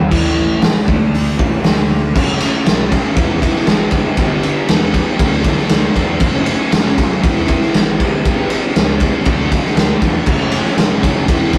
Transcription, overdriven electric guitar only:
0.10 0.59 A2 loud
0.10 0.60 E3 loud
0.10 0.62 A3 loud
0.60 0.82 A2 medium
0.60 0.82 E3 medium
0.85 1.37 D3 loud
0.85 1.37 A3 loud
0.85 1.37 D4 loud
1.37 1.63 A2 loud
1.37 1.62 E3 loud
1.37 1.62 A3 loud
1.62 2.14 D3 loud
1.62 2.14 A3 loud
1.62 2.15 D4 loud
2.14 2.39 F#2 medium
2.14 2.40 C#3 loud
2.14 2.40 F#3 loud
2.14 2.41 A3 loud
2.14 2.41 C#4 loud
2.41 2.63 F#2 loud
2.41 2.64 C#3 medium
2.41 2.65 F#3 medium
2.41 2.65 A3 medium
2.41 2.66 C#4 loud
2.65 2.88 F#2 medium
2.65 2.89 C#3 medium
2.65 2.90 F#3 medium
2.65 2.90 A3 medium
2.65 2.91 C#4 loud
2.89 3.14 F#2 medium
2.89 3.14 C#3 loud
2.89 3.15 F#3 medium
2.89 3.15 A3 medium
2.89 3.16 C#4 loud
3.14 3.39 E3 medium
3.14 3.40 G#3 medium
3.14 3.41 B3 loud
3.14 3.42 E4 loud
3.40 3.65 E3 medium
3.40 3.66 G#3 medium
3.40 3.66 B3 medium
3.40 3.66 E4 loud
3.67 3.91 E3 medium
3.67 3.91 G#3 loud
3.67 3.92 B3 medium
3.67 3.92 E4 loud
3.92 4.15 G2 loud
3.92 4.16 D3 loud
3.92 4.16 G3 loud
3.92 4.17 B3 loud
3.92 4.17 D4 loud
4.17 4.42 G2 loud
4.17 4.42 D3 loud
4.17 4.44 G3 loud
4.17 4.44 B3 loud
4.17 4.44 D4 loud
4.44 4.66 G2 medium
4.44 4.67 D3 medium
4.44 4.68 G3 loud
4.44 4.68 B3 medium
4.44 4.69 D4 medium
4.68 4.93 G2 medium
4.68 4.93 D3 loud
4.68 4.93 G3 loud
4.68 4.94 B3 loud
4.68 4.95 D4 loud
4.94 5.19 G2 medium
4.94 5.19 D3 loud
4.94 5.19 G3 loud
4.94 5.19 B3 loud
4.94 5.19 D4 loud
5.21 5.45 D3 loud
5.21 5.46 F#3 loud
5.21 5.46 A3 medium
5.21 5.47 D4 loud
5.46 5.70 D3 medium
5.46 5.72 F#3 medium
5.46 5.72 A3 loud
5.46 5.72 D4 medium
5.71 5.96 D3 medium
5.71 5.96 F#3 medium
5.71 5.97 A3 loud
5.71 5.98 D4 loud
5.97 6.21 D3 medium
5.97 6.21 F#3 medium
5.97 6.21 A3 medium
5.97 6.22 D4 loud
6.21 6.47 F#2 loud
6.21 6.48 C#3 loud
6.21 6.48 F#3 loud
6.21 6.49 A3 loud
6.21 6.49 C#4 loud
6.48 6.73 F#2 medium
6.48 6.72 C#3 medium
6.48 6.74 F#3 loud
6.48 6.73 A3 medium
6.48 6.74 C#4 loud
6.73 6.98 F#2 medium
6.73 6.98 C#3 medium
6.73 6.99 F#3 loud
6.73 6.99 A3 loud
6.73 7.00 C#4 loud
6.99 7.23 F#2 loud
6.99 7.22 C#3 loud
6.99 7.23 F#3 loud
6.99 7.23 A3 medium
6.99 7.24 C#4 medium
7.22 7.47 E3 medium
7.22 7.47 G#3 loud
7.22 7.47 B3 loud
7.22 7.48 E4 loud
7.48 7.72 E3 medium
7.48 7.73 G#3 medium
7.48 7.73 B3 medium
7.48 7.75 E4 loud
7.73 7.98 E3 loud
7.73 7.98 G#3 loud
7.73 7.98 B3 loud
7.73 7.99 E4 loud
7.99 8.23 G2 loud
7.99 8.24 D3 loud
7.99 8.24 G3 loud
7.99 8.25 B3 loud
7.99 8.26 D4 loud
8.24 8.49 G2 loud
8.24 8.50 D3 loud
8.24 8.50 G3 loud
8.24 8.51 B3 loud
8.24 8.52 D4 loud
8.50 8.72 G2 medium
8.50 8.73 D3 medium
8.50 8.74 G3 medium
8.50 8.75 B3 loud
8.50 8.76 D4 loud
8.74 8.99 G2 medium
8.74 9.00 D3 loud
8.74 9.01 G3 medium
8.74 9.01 B3 loud
8.74 9.02 D4 loud
9.00 9.25 G2 loud
9.00 9.24 D3 loud
9.00 9.26 G3 loud
9.00 9.25 B3 loud
9.00 9.25 D4 loud
9.25 9.51 D3 medium
9.25 9.53 F#3 medium
9.25 9.52 A3 loud
9.25 9.53 D4 loud
9.52 9.76 D3 medium
9.52 9.77 F#3 medium
9.52 9.77 A3 medium
9.52 9.78 D4 medium
9.77 10.00 D3 medium
9.77 10.01 F#3 medium
9.77 10.03 A3 medium
9.77 10.03 D4 loud
10.01 10.26 D3 medium
10.01 10.26 F#3 medium
10.01 10.27 A3 medium
10.01 10.27 D4 medium
10.27 10.51 F#2 medium
10.27 10.51 C#3 loud
10.27 10.51 F#3 loud
10.27 10.53 A3 loud
10.27 10.53 C#4 loud
10.52 10.77 F#2 loud
10.52 10.77 C#3 medium
10.52 10.78 F#3 medium
10.52 10.79 A3 loud
10.52 10.78 C#4 medium
10.78 11.03 F#2 loud
10.78 11.04 C#3 medium
10.78 11.04 F#3 loud
10.78 11.05 A3 loud
10.78 11.05 C#4 medium
11.04 11.28 F#2 medium
11.04 11.28 C#3 loud
11.04 11.28 F#3 loud
11.04 11.29 A3 loud
11.04 11.29 C#4 loud
11.29 11.54 E3 loud
11.29 11.54 G#3 loud
11.29 11.56 B3 loud
11.29 11.55 E4 loud
11.55 11.58 E3 medium

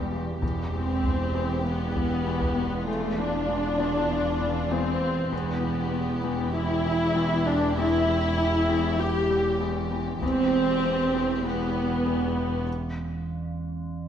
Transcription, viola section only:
0.00 0.12 G3 medium
0.73 1.61 C4 medium
1.65 2.87 B3 medium
2.87 3.17 A3 medium
3.18 4.71 D4 medium
4.71 5.32 C4 medium
5.33 6.55 B3 medium
6.54 7.44 E4 medium
7.46 7.77 D4 medium
7.77 8.97 E4 medium
8.99 9.61 G4 medium
10.23 11.41 C4 medium
11.45 12.65 B3 medium

